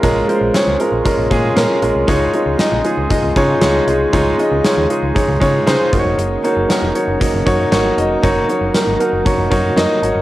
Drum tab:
HH |xxxxxxxx|xxxxxxxx|xxxxxxxx|xxxxxxxx|
SD |--o---o-|--o---o-|--o---o-|--o---o-|
BD |o---oo--|o---oo--|o---oo-o|----oo--|

HH |xxxxxxxx|
SD |--o---o-|
BD |o---oo--|